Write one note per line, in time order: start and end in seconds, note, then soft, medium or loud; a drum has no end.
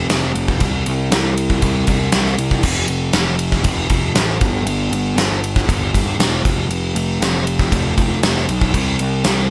0.10 0.35 F1 medium
0.10 snare loud
0.10 ride loud
0.35 0.60 F1 medium
0.35 ride medium
0.48 kick medium
0.60 0.85 C2 loud
0.60 kick medium
0.60 ride loud
0.86 1.11 C2 loud
0.86 ride medium
1.11 1.61 C2 loud
1.11 snare loud
1.11 ride loud
1.38 ride medium
1.50 kick medium
1.62 1.87 C2 medium
1.62 kick loud
1.62 ride loud
1.87 2.12 C2 loud
1.87 kick medium
1.87 ride medium
2.12 2.38 C2 medium
2.12 snare loud
2.12 ride loud
2.26 snare soft
2.38 2.63 C2 medium
2.38 ride medium
2.51 kick medium
2.63 2.88 F1 medium
2.63 kick loud
2.63 crash loud
2.88 3.13 F1 medium
2.88 ride medium
3.13 3.63 F1 loud
3.13 snare loud
3.13 ride loud
3.39 ride medium
3.52 kick medium
3.52 snare soft
3.64 3.90 F1 medium
3.64 kick loud
3.64 ride loud
3.90 4.14 F1 loud
3.90 kick medium
3.90 ride medium
4.15 4.40 A1 medium
4.15 snare loud
4.15 ride loud
4.41 4.65 G1 medium
4.41 kick loud
4.41 ride medium
4.65 4.91 G1 loud
4.65 ride loud
4.91 5.16 G1 loud
4.91 ride medium
5.16 5.66 G1 loud
5.16 snare loud
5.16 ride loud
5.44 ride medium
5.56 kick loud
5.56 snare soft
5.69 5.93 G1 medium
5.69 kick loud
5.69 ride loud
5.94 6.17 G1 loud
5.94 kick medium
5.94 ride medium
6.18 6.43 E1 medium
6.18 snare loud
6.18 ride loud
6.45 6.68 F1 medium
6.45 kick loud
6.45 ride medium
6.69 6.94 F1 medium
6.69 ride loud
6.95 7.20 F1 medium
6.95 ride medium
7.20 7.70 F1 loud
7.20 snare loud
7.20 ride loud
7.47 ride medium
7.59 kick medium
7.59 snare soft
7.72 7.97 F1 loud
7.72 kick loud
7.72 ride loud
7.97 8.22 F1 loud
7.97 kick medium
7.97 ride medium
8.23 8.48 F1 medium
8.23 snare loud
8.23 ride loud
8.37 snare soft
8.48 8.73 B1 medium
8.48 ride medium
8.61 kick medium
8.74 8.99 C2 loud
8.74 kick medium
8.74 ride loud
8.99 9.24 C2 loud
8.99 ride medium
9.24 9.50 C2 loud
9.24 snare loud
9.24 ride loud